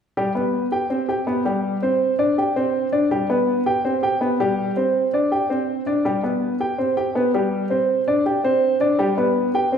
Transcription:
0.17 G3 G4
0.35 B3 B4
0.72 G4 G5
0.90 C4 C5
1.09 G4 G5
1.27 B3 B4
1.45 G3 G4
1.82 C4 C5
2.19 D4 D5
2.38 G4 G5
2.56 C4 C5
2.92 D4 D5
3.11 G3 G4
3.30 B3 B4
3.66 G4 G5
3.85 C4 C5
4.03 G4 G5
4.21 B3 B4
4.40 G3 G4
4.77 C4 C5
5.13 D4 D5
5.32 G4 G5
5.50 C4 C5
5.87 D4 D5
6.05 G3 G4
6.23 B3 B4
6.60 G4 G5
6.78 C4 C5
6.97 G4 G5
7.15 B3 B4
7.34 G3 G4
7.70 C4 C5
8.08 D4 D5
8.26 G4 G5
8.44 C4 C5
8.80 D4 D5
8.99 G3 G4
9.18 B3 B4
9.54 G4 G5
9.72 C4 C5

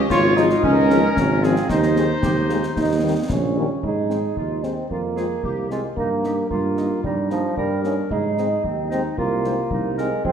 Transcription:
0.10 G#1 F4 C#5, concert bass drum, snare
0.36 F3 G#3 C#4 D#4, snare
0.50 snare
0.63 C#2 C#4 A#4, concert bass drum
0.90 F3 G#3 C#4, snare
1.15 G#1 C#4, concert bass drum, snare
1.42 F3 G#3 C4 C#4 F4 G#4, snare
1.56 snare
1.69 D#2 D#4 C5, concert bass drum, snare
1.83 snare
1.96 D#3 G#3, snare
2.23 D#2 G4, concert bass drum, snare
2.49 D#3 G#3 F4, snare
2.63 snare
2.76 D#2 D#4, concert bass drum, snare
3.03 D#3 G3 A#3
3.30 A#1 C#4, concert bass drum, snare
3.56 D#3 G3 A#3 C#4
3.83 G#2 D#4 G#4, concert bass drum
4.09 G#3 C4 D#4 C5, snare
4.37 D#2 F4, concert bass drum
4.62 G#3 C4 D#4 C5, snare
4.89 F2 A#3 F4, concert bass drum
5.16 G#3 C4 F4 G#4 C5, snare
5.43 C2 G4, concert bass drum
5.70 G#3 C4 F4 C5, snare
5.97 G2 A#3 D#4, concert bass drum
6.24 A#3 D#4 G4 D#5, snare
6.50 G2 A#3 F4, concert bass drum
6.77 A#3 D#4 D#5, snare
7.04 G2 G3 D#4, concert bass drum
7.30 F3 A#3 D#4 D#5, snare
7.57 G2 G3 A#4, concert bass drum
7.84 A#3 C#4 D#4 D#5, snare
8.10 G#2 D#4 G#4, concert bass drum
8.37 G#3 C4 D#4 D#5, snare
8.63 D#2 C4, concert bass drum
8.90 G#3 C4 D#4 D#5, snare
9.17 C2 A#3 F4, concert bass drum
9.44 G#3 C4 D#4 C5, snare
9.71 C2 D#4, concert bass drum
9.97 G#3 C4 D#4 A#4 C5, snare
10.24 F2 C4 G#4, concert bass drum

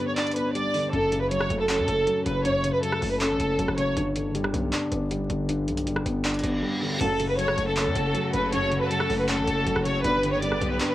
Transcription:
Already playing: G2 D3 G3 B3 D4
0.08 C#5
0.17 D4 D5, clap, closed hi-hat
0.22 closed hi-hat
0.27 closed hi-hat
0.31 closed hi-hat
0.36 B3 B4, closed hi-hat
0.55 G3 D5, closed hi-hat
0.74 D3, open hi-hat
0.93 F#1 F#2 A4, closed hi-hat
1.12 C#3, closed hi-hat
1.22 B4
1.31 F#3 C#5, closed hi-hat
1.40 cross-stick
1.50 F#1 A3, closed hi-hat
1.60 A4
1.69 C#4 A4, clap, closed hi-hat
1.79 F#2
1.88 F#1 A3, closed hi-hat
2.07 F#3, closed hi-hat
2.26 F#1 C#3 B4, closed hi-hat
2.45 F#2 C#5, closed hi-hat
2.64 C#3, closed hi-hat
2.73 B4
2.83 F#3 A4, closed hi-hat
2.92 cross-stick
3.02 F#1 A3, open hi-hat
3.11 B4
3.21 C#4 A4, clap, closed hi-hat
3.30 A1
3.40 F#1 A3, closed hi-hat
3.59 F#1 F#3, closed hi-hat
3.68 F#1, cross-stick
3.78 C#3 C#5, closed hi-hat
3.97 G1 G2, closed hi-hat
4.16 D3, closed hi-hat
4.25 F#1
4.35 G3, closed hi-hat
4.40 G1
4.44 cross-stick
4.54 B1 B3, closed hi-hat
4.73 D4, clap, closed hi-hat
4.92 G1 B3, closed hi-hat
5.11 G3, closed hi-hat
5.29 G1 D3, closed hi-hat
5.49 G2, closed hi-hat
5.67 B1 D3, closed hi-hat
5.77 closed hi-hat
5.87 G1 G3, closed hi-hat
5.96 cross-stick
6.05 G1 B3, closed hi-hat
6.25 D4, clap, closed hi-hat, reverse cymbal
6.29 closed hi-hat
6.34 closed hi-hat
6.39 closed hi-hat
6.44 G1 B3, closed hi-hat
6.63 G3
6.82 D3
7.00 F#1 F#2 A2 C#3 F#3 A3 F#4 A4, closed hi-hat, crash
7.20 C#3, closed hi-hat
7.29 B4
7.38 F#3 C#5, closed hi-hat
7.48 cross-stick
7.57 F#1 A3, closed hi-hat
7.68 A4
7.76 C#4 A4, clap, closed hi-hat
7.86 F#2
7.95 F#1 A3, closed hi-hat
8.14 F#3, closed hi-hat
8.33 F#1 C#3 B4, closed hi-hat
8.53 F#2 C#5, closed hi-hat
8.72 C#3, closed hi-hat
8.81 B4
8.90 F#3 A4, closed hi-hat
9.00 cross-stick
9.09 F#1 A3, open hi-hat
9.19 B4
9.28 C#4 A4, clap, closed hi-hat
9.38 A1
9.47 F#1 A3, closed hi-hat
9.66 F#1 F#3, closed hi-hat
9.76 F#1, cross-stick
9.85 C#3 C#5, closed hi-hat
10.04 G1 G2 B2 D3 G3 B3 G4 B4, closed hi-hat
10.23 D3, closed hi-hat
10.33 F#1 C#5
10.42 G3 D5, closed hi-hat
10.47 G1
10.52 cross-stick
10.61 B1 B3, closed hi-hat
10.71 B4
10.80 D4 B4, clap, closed hi-hat

